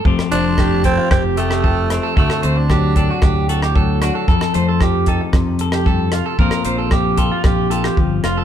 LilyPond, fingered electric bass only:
\new Staff \with { instrumentName = "Fingered electric bass" } { \clef bass \time 4/4 \key f \major \tempo 4 = 114 f,,16 r16 f,,4. f,,2 | d,16 r16 d,4. d,2 | f,16 r16 f,4. f,2 | bes,,16 r16 bes,,4. bes,,4 g,,8 f,,8 | }